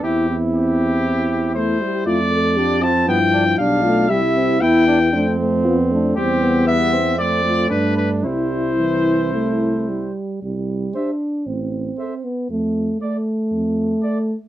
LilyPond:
<<
  \new Staff \with { instrumentName = "Trumpet" } { \time 4/4 \key c \major \tempo 4 = 117 g'8 r8 g'2 c''4 | d''4. a''8 g''4 f''4 | e''4 g''4. r4. | g'4 e''4 d''4 b'8 b'8 |
c''2.~ c''8 r8 | r4 e''4 r4 e''4 | r4 d''4 r4 d''4 | }
  \new Staff \with { instrumentName = "French horn" } { \time 4/4 \key c \major e'8 c'2 r8 e'8 g'8 | f'8 a'8 g'8 f'8 e'4 d'8 f'8 | g'4 e'4 d'8 c'8 f'8 d'8 | c'8 b4. a8 f'8 d'8 r8 |
e'2.~ e'8 r8 | r4 g'4 r4 a'4 | r4 a'4 r4 a'4 | }
  \new Staff \with { instrumentName = "Flugelhorn" } { \time 4/4 \key c \major e'8 e'2.~ e'8~ | e'8 r8 d'8 c'8 b8 d'8 d'4 | e'4 e'8 d'8 c'2 | c'4 b8 c'4. d'4 |
e'2.~ e'8 r8 | r4 c''4 r4 c''4 | r4 d''4 r4 d''4 | }
  \new Staff \with { instrumentName = "Euphonium" } { \time 4/4 \key c \major c'8 r8 c'2 a8 g8 | a4 f2 g8 a8 | g8 c'8 b4 a8 a8 b8 a8 | g4 g8 r8 a8 a4. |
g4 e4 a4 g4 | g4 d'4 c'4. b8 | a4 a2. | }
  \new Staff \with { instrumentName = "Tuba" } { \clef bass \time 4/4 \key c \major e,2.~ e,8 r8 | f,2 g,4 b,,4 | c,4 e,4 f,2 | e,2 f,4 g,4 |
c,2.~ c,8 r8 | c,4 r4 a,,4 r4 | f,4 r4 f,4 r4 | }
>>